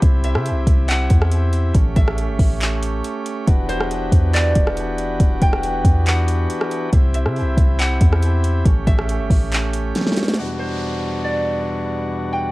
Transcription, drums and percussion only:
0.02 kick, closed hi-hat
0.24 closed hi-hat
0.35 cross-stick
0.46 closed hi-hat
0.67 kick, closed hi-hat
0.89 clap, closed hi-hat
1.10 kick, closed hi-hat
1.22 cross-stick
1.32 closed hi-hat
1.53 closed hi-hat
1.75 kick, closed hi-hat
1.96 kick, closed hi-hat
2.08 cross-stick
2.18 closed hi-hat
2.39 kick, open hi-hat
2.61 clap, closed hi-hat
2.83 closed hi-hat
3.04 closed hi-hat
3.26 closed hi-hat
3.47 kick, closed hi-hat
3.69 closed hi-hat
3.80 cross-stick
3.91 closed hi-hat
4.12 kick, closed hi-hat
4.34 clap, closed hi-hat
4.55 kick, closed hi-hat
4.67 cross-stick
4.77 closed hi-hat
4.98 closed hi-hat
5.20 kick, closed hi-hat
5.42 kick, closed hi-hat
5.53 cross-stick
5.63 closed hi-hat
5.85 kick, closed hi-hat
6.06 clap, closed hi-hat
6.28 closed hi-hat
6.50 closed hi-hat
6.61 cross-stick
6.71 closed hi-hat
6.93 kick, closed hi-hat
7.14 closed hi-hat
7.26 cross-stick
7.36 closed hi-hat
7.57 kick, closed hi-hat
7.79 clap, closed hi-hat
8.01 kick, closed hi-hat
8.13 cross-stick
8.23 closed hi-hat
8.44 closed hi-hat
8.66 kick, closed hi-hat
8.87 kick, closed hi-hat
8.99 cross-stick
9.09 closed hi-hat
9.30 kick, open hi-hat
9.52 clap, closed hi-hat
9.74 closed hi-hat
9.95 snare, closed hi-hat
10.01 snare
10.07 snare
10.12 snare
10.17 snare, closed hi-hat
10.23 snare
10.28 snare
10.34 snare

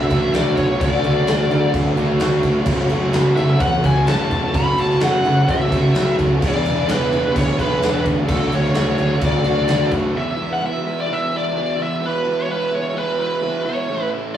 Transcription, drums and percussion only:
0.10 kick, crash
0.34 snare, crash
0.57 kick, crash
0.81 kick, crash
1.04 crash
1.27 snare, crash
1.40 snare
1.51 crash
1.74 kick, crash
1.97 crash
2.20 snare, crash
2.43 kick, crash
2.66 kick, crash
2.89 crash
3.13 snare, crash
3.37 crash
3.60 kick, crash
3.84 kick, crash
4.07 snare, crash
4.31 kick, crash
4.54 kick, crash
4.78 crash
4.90 snare
5.00 snare, crash
5.25 crash
5.49 kick, crash
5.72 kick, crash
5.95 snare, crash
6.19 kick, crash
6.42 kick, crash
6.65 crash
6.89 snare, crash
7.02 snare
7.12 crash
7.36 kick, crash
7.59 kick, crash
7.82 snare, crash
8.06 kick, crash
8.28 kick, crash
8.52 crash
8.64 snare
8.74 snare, crash
8.98 crash
9.21 kick, crash
9.44 crash
9.68 snare, crash
9.91 kick, crash

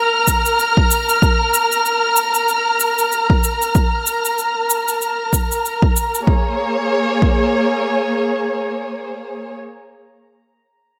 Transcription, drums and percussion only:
0.28 kick, cabasa
0.46 cabasa
0.59 cabasa
0.77 kick
0.91 cabasa
1.09 cabasa
1.22 kick, cabasa
1.54 cabasa
1.72 cabasa
1.85 cabasa
2.17 cabasa
2.35 cabasa
2.48 cabasa
2.80 cabasa
2.99 cabasa
3.12 cabasa
3.30 kick
3.44 cabasa
3.62 cabasa
3.75 kick, cabasa
4.07 cabasa
4.25 cabasa
4.39 cabasa
4.70 cabasa
4.88 cabasa
5.02 cabasa
5.33 kick, cabasa
5.52 cabasa
5.65 cabasa
5.82 kick
5.96 cabasa
6.15 cabasa
6.27 kick
7.22 kick

